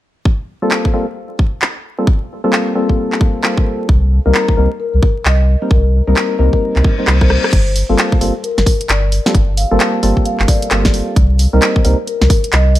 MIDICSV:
0, 0, Header, 1, 6, 480
1, 0, Start_track
1, 0, Tempo, 454545
1, 269, Time_signature, 4, 2, 24, 8
1, 13509, End_track
2, 0, Start_track
2, 0, Title_t, "Marimba"
2, 0, Program_c, 0, 12
2, 5066, Note_on_c, 0, 70, 82
2, 5163, Note_off_c, 0, 70, 0
2, 5213, Note_on_c, 0, 70, 71
2, 5274, Note_off_c, 0, 70, 0
2, 5547, Note_on_c, 0, 75, 86
2, 5770, Note_off_c, 0, 75, 0
2, 6026, Note_on_c, 0, 70, 88
2, 6250, Note_off_c, 0, 70, 0
2, 6896, Note_on_c, 0, 70, 86
2, 7107, Note_off_c, 0, 70, 0
2, 7617, Note_on_c, 0, 72, 81
2, 7676, Note_off_c, 0, 72, 0
2, 7707, Note_on_c, 0, 72, 70
2, 7804, Note_off_c, 0, 72, 0
2, 8908, Note_on_c, 0, 70, 85
2, 9004, Note_off_c, 0, 70, 0
2, 9057, Note_on_c, 0, 70, 71
2, 9116, Note_off_c, 0, 70, 0
2, 9387, Note_on_c, 0, 74, 86
2, 9610, Note_off_c, 0, 74, 0
2, 10109, Note_on_c, 0, 77, 87
2, 10331, Note_off_c, 0, 77, 0
2, 10829, Note_on_c, 0, 77, 87
2, 11051, Note_off_c, 0, 77, 0
2, 11067, Note_on_c, 0, 74, 89
2, 11457, Note_off_c, 0, 74, 0
2, 12748, Note_on_c, 0, 70, 84
2, 12844, Note_off_c, 0, 70, 0
2, 12900, Note_on_c, 0, 70, 76
2, 12958, Note_off_c, 0, 70, 0
2, 13230, Note_on_c, 0, 75, 88
2, 13452, Note_off_c, 0, 75, 0
2, 13509, End_track
3, 0, Start_track
3, 0, Title_t, "Synth stab"
3, 0, Program_c, 1, 62
3, 657, Note_on_c, 1, 55, 81
3, 657, Note_on_c, 1, 60, 75
3, 657, Note_on_c, 1, 65, 76
3, 657, Note_on_c, 1, 69, 91
3, 658, Note_on_c, 1, 58, 76
3, 967, Note_off_c, 1, 55, 0
3, 967, Note_off_c, 1, 58, 0
3, 967, Note_off_c, 1, 60, 0
3, 967, Note_off_c, 1, 65, 0
3, 967, Note_off_c, 1, 69, 0
3, 988, Note_on_c, 1, 55, 82
3, 988, Note_on_c, 1, 58, 76
3, 988, Note_on_c, 1, 65, 76
3, 988, Note_on_c, 1, 69, 90
3, 989, Note_on_c, 1, 60, 77
3, 1119, Note_off_c, 1, 55, 0
3, 1119, Note_off_c, 1, 58, 0
3, 1119, Note_off_c, 1, 60, 0
3, 1119, Note_off_c, 1, 65, 0
3, 1119, Note_off_c, 1, 69, 0
3, 2097, Note_on_c, 1, 55, 75
3, 2097, Note_on_c, 1, 58, 68
3, 2097, Note_on_c, 1, 60, 70
3, 2097, Note_on_c, 1, 65, 69
3, 2097, Note_on_c, 1, 69, 84
3, 2178, Note_off_c, 1, 55, 0
3, 2178, Note_off_c, 1, 58, 0
3, 2178, Note_off_c, 1, 60, 0
3, 2178, Note_off_c, 1, 65, 0
3, 2178, Note_off_c, 1, 69, 0
3, 2577, Note_on_c, 1, 55, 95
3, 2577, Note_on_c, 1, 58, 86
3, 2577, Note_on_c, 1, 60, 88
3, 2577, Note_on_c, 1, 65, 89
3, 2577, Note_on_c, 1, 69, 107
3, 2887, Note_off_c, 1, 55, 0
3, 2887, Note_off_c, 1, 58, 0
3, 2887, Note_off_c, 1, 60, 0
3, 2887, Note_off_c, 1, 65, 0
3, 2887, Note_off_c, 1, 69, 0
3, 2908, Note_on_c, 1, 55, 91
3, 2908, Note_on_c, 1, 58, 80
3, 2908, Note_on_c, 1, 69, 101
3, 2909, Note_on_c, 1, 60, 85
3, 2909, Note_on_c, 1, 65, 81
3, 3607, Note_off_c, 1, 55, 0
3, 3607, Note_off_c, 1, 58, 0
3, 3607, Note_off_c, 1, 60, 0
3, 3607, Note_off_c, 1, 65, 0
3, 3607, Note_off_c, 1, 69, 0
3, 3627, Note_on_c, 1, 58, 72
3, 3627, Note_on_c, 1, 60, 70
3, 3627, Note_on_c, 1, 69, 88
3, 3628, Note_on_c, 1, 55, 77
3, 3628, Note_on_c, 1, 65, 70
3, 4097, Note_off_c, 1, 58, 0
3, 4097, Note_off_c, 1, 60, 0
3, 4097, Note_off_c, 1, 69, 0
3, 4098, Note_off_c, 1, 55, 0
3, 4098, Note_off_c, 1, 65, 0
3, 4496, Note_on_c, 1, 55, 83
3, 4496, Note_on_c, 1, 58, 76
3, 4496, Note_on_c, 1, 60, 75
3, 4496, Note_on_c, 1, 63, 80
3, 4496, Note_on_c, 1, 70, 93
3, 4806, Note_off_c, 1, 55, 0
3, 4806, Note_off_c, 1, 60, 0
3, 4806, Note_off_c, 1, 63, 0
3, 4806, Note_off_c, 1, 70, 0
3, 4807, Note_off_c, 1, 58, 0
3, 4825, Note_on_c, 1, 58, 81
3, 4825, Note_on_c, 1, 70, 94
3, 4826, Note_on_c, 1, 55, 83
3, 4826, Note_on_c, 1, 60, 78
3, 4826, Note_on_c, 1, 63, 80
3, 4958, Note_off_c, 1, 55, 0
3, 4958, Note_off_c, 1, 58, 0
3, 4958, Note_off_c, 1, 60, 0
3, 4958, Note_off_c, 1, 63, 0
3, 4958, Note_off_c, 1, 70, 0
3, 5934, Note_on_c, 1, 55, 78
3, 5934, Note_on_c, 1, 60, 74
3, 5934, Note_on_c, 1, 63, 70
3, 5935, Note_on_c, 1, 58, 73
3, 5935, Note_on_c, 1, 70, 88
3, 6016, Note_off_c, 1, 60, 0
3, 6016, Note_off_c, 1, 63, 0
3, 6017, Note_off_c, 1, 55, 0
3, 6017, Note_off_c, 1, 58, 0
3, 6017, Note_off_c, 1, 70, 0
3, 6414, Note_on_c, 1, 70, 109
3, 6415, Note_on_c, 1, 55, 98
3, 6415, Note_on_c, 1, 58, 92
3, 6415, Note_on_c, 1, 60, 89
3, 6415, Note_on_c, 1, 63, 89
3, 6726, Note_off_c, 1, 55, 0
3, 6726, Note_off_c, 1, 58, 0
3, 6726, Note_off_c, 1, 60, 0
3, 6726, Note_off_c, 1, 63, 0
3, 6726, Note_off_c, 1, 70, 0
3, 6746, Note_on_c, 1, 55, 93
3, 6746, Note_on_c, 1, 60, 84
3, 6746, Note_on_c, 1, 63, 84
3, 6746, Note_on_c, 1, 70, 104
3, 6747, Note_on_c, 1, 58, 84
3, 7347, Note_off_c, 1, 55, 0
3, 7347, Note_off_c, 1, 58, 0
3, 7347, Note_off_c, 1, 60, 0
3, 7347, Note_off_c, 1, 63, 0
3, 7347, Note_off_c, 1, 70, 0
3, 7375, Note_on_c, 1, 55, 74
3, 7375, Note_on_c, 1, 58, 67
3, 7375, Note_on_c, 1, 60, 69
3, 7375, Note_on_c, 1, 63, 68
3, 7375, Note_on_c, 1, 72, 80
3, 7581, Note_off_c, 1, 55, 0
3, 7581, Note_off_c, 1, 58, 0
3, 7581, Note_off_c, 1, 60, 0
3, 7581, Note_off_c, 1, 63, 0
3, 7581, Note_off_c, 1, 72, 0
3, 7616, Note_on_c, 1, 55, 75
3, 7616, Note_on_c, 1, 58, 70
3, 7616, Note_on_c, 1, 60, 68
3, 7616, Note_on_c, 1, 63, 68
3, 7616, Note_on_c, 1, 70, 84
3, 7937, Note_off_c, 1, 55, 0
3, 7937, Note_off_c, 1, 58, 0
3, 7937, Note_off_c, 1, 63, 0
3, 7937, Note_off_c, 1, 70, 0
3, 7938, Note_off_c, 1, 60, 0
3, 8335, Note_on_c, 1, 58, 78
3, 8336, Note_on_c, 1, 55, 87
3, 8336, Note_on_c, 1, 60, 79
3, 8336, Note_on_c, 1, 65, 81
3, 8336, Note_on_c, 1, 69, 94
3, 8646, Note_off_c, 1, 55, 0
3, 8646, Note_off_c, 1, 58, 0
3, 8646, Note_off_c, 1, 69, 0
3, 8647, Note_off_c, 1, 60, 0
3, 8647, Note_off_c, 1, 65, 0
3, 8667, Note_on_c, 1, 69, 96
3, 8668, Note_on_c, 1, 55, 83
3, 8668, Note_on_c, 1, 58, 77
3, 8668, Note_on_c, 1, 60, 78
3, 8668, Note_on_c, 1, 65, 77
3, 8799, Note_off_c, 1, 55, 0
3, 8799, Note_off_c, 1, 58, 0
3, 8799, Note_off_c, 1, 60, 0
3, 8799, Note_off_c, 1, 65, 0
3, 8799, Note_off_c, 1, 69, 0
3, 9777, Note_on_c, 1, 55, 81
3, 9777, Note_on_c, 1, 60, 71
3, 9777, Note_on_c, 1, 69, 86
3, 9778, Note_on_c, 1, 58, 73
3, 9778, Note_on_c, 1, 65, 71
3, 9858, Note_off_c, 1, 55, 0
3, 9858, Note_off_c, 1, 58, 0
3, 9858, Note_off_c, 1, 60, 0
3, 9858, Note_off_c, 1, 65, 0
3, 9858, Note_off_c, 1, 69, 0
3, 10257, Note_on_c, 1, 55, 98
3, 10257, Note_on_c, 1, 58, 93
3, 10257, Note_on_c, 1, 60, 90
3, 10257, Note_on_c, 1, 65, 90
3, 10257, Note_on_c, 1, 69, 110
3, 10567, Note_off_c, 1, 55, 0
3, 10567, Note_off_c, 1, 58, 0
3, 10567, Note_off_c, 1, 60, 0
3, 10567, Note_off_c, 1, 65, 0
3, 10567, Note_off_c, 1, 69, 0
3, 10588, Note_on_c, 1, 55, 95
3, 10588, Note_on_c, 1, 58, 83
3, 10588, Note_on_c, 1, 60, 85
3, 10588, Note_on_c, 1, 65, 86
3, 10588, Note_on_c, 1, 69, 103
3, 11287, Note_off_c, 1, 55, 0
3, 11287, Note_off_c, 1, 58, 0
3, 11287, Note_off_c, 1, 60, 0
3, 11287, Note_off_c, 1, 65, 0
3, 11287, Note_off_c, 1, 69, 0
3, 11308, Note_on_c, 1, 55, 81
3, 11308, Note_on_c, 1, 60, 75
3, 11308, Note_on_c, 1, 65, 73
3, 11308, Note_on_c, 1, 69, 91
3, 11309, Note_on_c, 1, 58, 75
3, 11778, Note_off_c, 1, 55, 0
3, 11778, Note_off_c, 1, 58, 0
3, 11778, Note_off_c, 1, 60, 0
3, 11778, Note_off_c, 1, 65, 0
3, 11778, Note_off_c, 1, 69, 0
3, 12177, Note_on_c, 1, 60, 81
3, 12178, Note_on_c, 1, 55, 89
3, 12178, Note_on_c, 1, 58, 79
3, 12178, Note_on_c, 1, 63, 79
3, 12178, Note_on_c, 1, 70, 95
3, 12487, Note_off_c, 1, 55, 0
3, 12487, Note_off_c, 1, 58, 0
3, 12487, Note_off_c, 1, 60, 0
3, 12487, Note_off_c, 1, 70, 0
3, 12488, Note_off_c, 1, 63, 0
3, 12508, Note_on_c, 1, 55, 87
3, 12509, Note_on_c, 1, 58, 82
3, 12509, Note_on_c, 1, 60, 81
3, 12509, Note_on_c, 1, 63, 79
3, 12509, Note_on_c, 1, 70, 97
3, 12639, Note_off_c, 1, 55, 0
3, 12639, Note_off_c, 1, 58, 0
3, 12639, Note_off_c, 1, 60, 0
3, 12640, Note_off_c, 1, 63, 0
3, 12640, Note_off_c, 1, 70, 0
3, 13509, End_track
4, 0, Start_track
4, 0, Title_t, "Sub bass"
4, 0, Program_c, 2, 38
4, 4106, Note_on_c, 2, 36, 96
4, 4432, Note_off_c, 2, 36, 0
4, 4496, Note_on_c, 2, 36, 77
4, 4564, Note_off_c, 2, 36, 0
4, 4827, Note_on_c, 2, 36, 89
4, 4936, Note_off_c, 2, 36, 0
4, 5215, Note_on_c, 2, 36, 91
4, 5283, Note_off_c, 2, 36, 0
4, 5546, Note_on_c, 2, 36, 91
4, 5871, Note_off_c, 2, 36, 0
4, 6027, Note_on_c, 2, 36, 93
4, 6352, Note_off_c, 2, 36, 0
4, 6416, Note_on_c, 2, 36, 79
4, 6483, Note_off_c, 2, 36, 0
4, 6748, Note_on_c, 2, 36, 87
4, 6857, Note_off_c, 2, 36, 0
4, 7136, Note_on_c, 2, 36, 95
4, 7204, Note_off_c, 2, 36, 0
4, 7467, Note_on_c, 2, 36, 84
4, 7792, Note_off_c, 2, 36, 0
4, 7948, Note_on_c, 2, 31, 97
4, 8273, Note_off_c, 2, 31, 0
4, 8335, Note_on_c, 2, 31, 79
4, 8403, Note_off_c, 2, 31, 0
4, 8668, Note_on_c, 2, 31, 89
4, 8777, Note_off_c, 2, 31, 0
4, 9057, Note_on_c, 2, 31, 93
4, 9124, Note_off_c, 2, 31, 0
4, 9387, Note_on_c, 2, 31, 95
4, 9712, Note_off_c, 2, 31, 0
4, 9868, Note_on_c, 2, 31, 100
4, 10193, Note_off_c, 2, 31, 0
4, 10257, Note_on_c, 2, 31, 78
4, 10324, Note_off_c, 2, 31, 0
4, 10589, Note_on_c, 2, 31, 90
4, 10698, Note_off_c, 2, 31, 0
4, 10977, Note_on_c, 2, 31, 93
4, 11044, Note_off_c, 2, 31, 0
4, 11309, Note_on_c, 2, 31, 92
4, 11633, Note_off_c, 2, 31, 0
4, 11789, Note_on_c, 2, 36, 101
4, 12113, Note_off_c, 2, 36, 0
4, 12178, Note_on_c, 2, 36, 80
4, 12244, Note_off_c, 2, 36, 0
4, 12509, Note_on_c, 2, 36, 90
4, 12617, Note_off_c, 2, 36, 0
4, 12897, Note_on_c, 2, 36, 94
4, 12964, Note_off_c, 2, 36, 0
4, 13229, Note_on_c, 2, 36, 92
4, 13509, Note_off_c, 2, 36, 0
4, 13509, End_track
5, 0, Start_track
5, 0, Title_t, "Reverse cymbal"
5, 0, Program_c, 3, 119
5, 6988, Note_on_c, 3, 60, 72
5, 7949, Note_off_c, 3, 60, 0
5, 13509, End_track
6, 0, Start_track
6, 0, Title_t, "Drums"
6, 269, Note_on_c, 9, 36, 104
6, 374, Note_off_c, 9, 36, 0
6, 749, Note_on_c, 9, 39, 108
6, 854, Note_off_c, 9, 39, 0
6, 897, Note_on_c, 9, 36, 92
6, 1003, Note_off_c, 9, 36, 0
6, 1469, Note_on_c, 9, 36, 93
6, 1574, Note_off_c, 9, 36, 0
6, 1709, Note_on_c, 9, 39, 105
6, 1814, Note_off_c, 9, 39, 0
6, 2188, Note_on_c, 9, 36, 111
6, 2294, Note_off_c, 9, 36, 0
6, 2669, Note_on_c, 9, 39, 114
6, 2775, Note_off_c, 9, 39, 0
6, 3056, Note_on_c, 9, 36, 57
6, 3162, Note_off_c, 9, 36, 0
6, 3298, Note_on_c, 9, 39, 58
6, 3387, Note_on_c, 9, 36, 99
6, 3404, Note_off_c, 9, 39, 0
6, 3493, Note_off_c, 9, 36, 0
6, 3628, Note_on_c, 9, 39, 114
6, 3734, Note_off_c, 9, 39, 0
6, 3776, Note_on_c, 9, 36, 97
6, 3881, Note_off_c, 9, 36, 0
6, 4107, Note_on_c, 9, 36, 114
6, 4213, Note_off_c, 9, 36, 0
6, 4589, Note_on_c, 9, 39, 118
6, 4694, Note_off_c, 9, 39, 0
6, 4736, Note_on_c, 9, 36, 98
6, 4841, Note_off_c, 9, 36, 0
6, 5307, Note_on_c, 9, 36, 102
6, 5413, Note_off_c, 9, 36, 0
6, 5549, Note_on_c, 9, 39, 115
6, 5655, Note_off_c, 9, 39, 0
6, 6027, Note_on_c, 9, 36, 115
6, 6133, Note_off_c, 9, 36, 0
6, 6508, Note_on_c, 9, 39, 114
6, 6614, Note_off_c, 9, 39, 0
6, 6896, Note_on_c, 9, 36, 59
6, 7002, Note_off_c, 9, 36, 0
6, 7138, Note_on_c, 9, 39, 59
6, 7228, Note_on_c, 9, 36, 101
6, 7244, Note_off_c, 9, 39, 0
6, 7333, Note_off_c, 9, 36, 0
6, 7470, Note_on_c, 9, 37, 58
6, 7470, Note_on_c, 9, 39, 118
6, 7575, Note_off_c, 9, 37, 0
6, 7575, Note_off_c, 9, 39, 0
6, 7617, Note_on_c, 9, 36, 97
6, 7619, Note_on_c, 9, 37, 59
6, 7710, Note_off_c, 9, 37, 0
6, 7710, Note_on_c, 9, 37, 81
6, 7723, Note_off_c, 9, 36, 0
6, 7816, Note_off_c, 9, 37, 0
6, 7860, Note_on_c, 9, 37, 80
6, 7949, Note_on_c, 9, 36, 111
6, 7951, Note_on_c, 9, 42, 62
6, 7951, Note_on_c, 9, 49, 91
6, 7965, Note_off_c, 9, 37, 0
6, 8054, Note_off_c, 9, 36, 0
6, 8056, Note_off_c, 9, 42, 0
6, 8056, Note_off_c, 9, 49, 0
6, 8191, Note_on_c, 9, 46, 101
6, 8297, Note_off_c, 9, 46, 0
6, 8432, Note_on_c, 9, 39, 115
6, 8432, Note_on_c, 9, 42, 63
6, 8538, Note_off_c, 9, 39, 0
6, 8538, Note_off_c, 9, 42, 0
6, 8578, Note_on_c, 9, 36, 98
6, 8672, Note_on_c, 9, 46, 92
6, 8683, Note_off_c, 9, 36, 0
6, 8778, Note_off_c, 9, 46, 0
6, 8911, Note_on_c, 9, 42, 62
6, 9017, Note_off_c, 9, 42, 0
6, 9060, Note_on_c, 9, 38, 55
6, 9149, Note_on_c, 9, 36, 100
6, 9152, Note_on_c, 9, 46, 99
6, 9166, Note_off_c, 9, 38, 0
6, 9255, Note_off_c, 9, 36, 0
6, 9257, Note_off_c, 9, 46, 0
6, 9301, Note_on_c, 9, 42, 63
6, 9392, Note_off_c, 9, 42, 0
6, 9392, Note_on_c, 9, 39, 115
6, 9392, Note_on_c, 9, 42, 61
6, 9497, Note_off_c, 9, 39, 0
6, 9497, Note_off_c, 9, 42, 0
6, 9632, Note_on_c, 9, 46, 92
6, 9738, Note_off_c, 9, 46, 0
6, 9781, Note_on_c, 9, 38, 68
6, 9869, Note_on_c, 9, 36, 114
6, 9871, Note_on_c, 9, 42, 60
6, 9886, Note_off_c, 9, 38, 0
6, 9974, Note_off_c, 9, 36, 0
6, 9976, Note_off_c, 9, 42, 0
6, 10110, Note_on_c, 9, 46, 98
6, 10216, Note_off_c, 9, 46, 0
6, 10350, Note_on_c, 9, 39, 119
6, 10350, Note_on_c, 9, 42, 62
6, 10456, Note_off_c, 9, 39, 0
6, 10456, Note_off_c, 9, 42, 0
6, 10591, Note_on_c, 9, 46, 92
6, 10696, Note_off_c, 9, 46, 0
6, 10737, Note_on_c, 9, 36, 60
6, 10829, Note_on_c, 9, 42, 59
6, 10843, Note_off_c, 9, 36, 0
6, 10935, Note_off_c, 9, 42, 0
6, 10979, Note_on_c, 9, 39, 62
6, 11069, Note_on_c, 9, 36, 102
6, 11070, Note_on_c, 9, 46, 100
6, 11084, Note_off_c, 9, 39, 0
6, 11174, Note_off_c, 9, 36, 0
6, 11175, Note_off_c, 9, 46, 0
6, 11219, Note_on_c, 9, 42, 61
6, 11309, Note_off_c, 9, 42, 0
6, 11309, Note_on_c, 9, 39, 119
6, 11309, Note_on_c, 9, 42, 59
6, 11415, Note_off_c, 9, 39, 0
6, 11415, Note_off_c, 9, 42, 0
6, 11457, Note_on_c, 9, 36, 103
6, 11458, Note_on_c, 9, 38, 66
6, 11550, Note_on_c, 9, 46, 89
6, 11563, Note_off_c, 9, 36, 0
6, 11563, Note_off_c, 9, 38, 0
6, 11656, Note_off_c, 9, 46, 0
6, 11789, Note_on_c, 9, 36, 118
6, 11791, Note_on_c, 9, 42, 61
6, 11894, Note_off_c, 9, 36, 0
6, 11896, Note_off_c, 9, 42, 0
6, 12030, Note_on_c, 9, 46, 96
6, 12136, Note_off_c, 9, 46, 0
6, 12270, Note_on_c, 9, 39, 122
6, 12270, Note_on_c, 9, 42, 63
6, 12376, Note_off_c, 9, 39, 0
6, 12376, Note_off_c, 9, 42, 0
6, 12418, Note_on_c, 9, 36, 104
6, 12509, Note_on_c, 9, 46, 91
6, 12523, Note_off_c, 9, 36, 0
6, 12615, Note_off_c, 9, 46, 0
6, 12750, Note_on_c, 9, 42, 61
6, 12856, Note_off_c, 9, 42, 0
6, 12899, Note_on_c, 9, 38, 56
6, 12989, Note_on_c, 9, 36, 109
6, 12989, Note_on_c, 9, 46, 98
6, 13005, Note_off_c, 9, 38, 0
6, 13095, Note_off_c, 9, 36, 0
6, 13095, Note_off_c, 9, 46, 0
6, 13137, Note_on_c, 9, 42, 60
6, 13228, Note_off_c, 9, 42, 0
6, 13228, Note_on_c, 9, 39, 116
6, 13228, Note_on_c, 9, 42, 59
6, 13334, Note_off_c, 9, 39, 0
6, 13334, Note_off_c, 9, 42, 0
6, 13469, Note_on_c, 9, 46, 86
6, 13509, Note_off_c, 9, 46, 0
6, 13509, End_track
0, 0, End_of_file